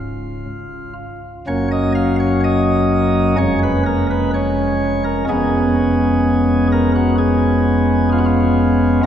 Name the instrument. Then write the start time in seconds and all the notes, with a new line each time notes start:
pipe organ
Already playing: C#1 C#2 F4
1.47 F#1 F#2 F#3 A#3 C#4 C#5
1.71 D#5
1.95 F5
2.20 C#5
2.44 D#5
3.38 F1 F2 G#3 C#4 C#5
3.63 B4
3.86 A#4
4.11 B4
4.34 C#5
5.04 A#4
5.29 F1 F2 G#3 B3 C#4 G#4
6.72 A#4
6.96 F#4
7.18 G#4
8.12 F4
8.18 F#4
8.26 F4